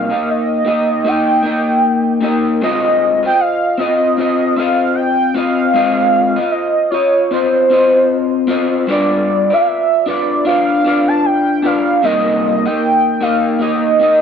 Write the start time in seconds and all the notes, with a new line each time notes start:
Already playing: C3 G3 A#3 D#4 G4 F5
0.10 A#3 D#4 G4 D#5
0.30 D#5
0.65 A#3 D#4 G4 D#5
1.04 A#3 D#4 G4 D#5 G5
1.43 A#3 D#4 G4 D#5
2.21 A#3 D#4 G4 D#5
2.61 G#3 C4 F4 C5 D#5
3.23 F4 C5 D#5 G5
3.40 F5
3.78 C4 F4 C5 D#5
4.17 C4 F4 C5 D#5
4.56 C4 F4 C5 D#5 F5
4.95 G5
5.34 C4 F4 C5 D#5 F5
5.74 G#3 C4 F4 C5 D#5
6.36 F4 C5 D#5
6.51 D#5
6.90 F4 C#5 D#5
7.31 C4 F4 C5 D#5
7.70 C4 F4 C5 D#5
8.47 C4 F4 C5 D#5
8.87 G3 D4 F4 B4 D5
8.91 D5
9.50 F4 B4 D5 F5
9.57 E5 F5
9.67 E5
10.06 D4 F4 B4 D5
10.45 D4 F4 B4 D5 F5
10.84 D4 F4 B4 D5
11.08 A5
11.25 G5
11.62 D4 F4 B4 D5 F5
12.02 C3 G3 A#3 D#4 G4 D#5
12.65 A#3 D#4 G4 D#5 G5
13.21 A#3 D#4 G4 D#5 F5
13.59 A#3 D#4 G4 D#5
13.99 A#3 D#4 G4 D#5